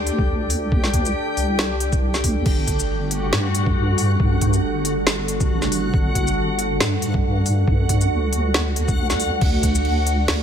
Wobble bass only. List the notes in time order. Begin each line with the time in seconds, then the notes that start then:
Already playing: D2
1.37 C2
2.24 D2
2.46 G1
3.33 G2
4.63 G1
5.50 G1
5.94 G1
6.80 G2
8.11 D2
8.98 D2
9.42 D2
10.28 D2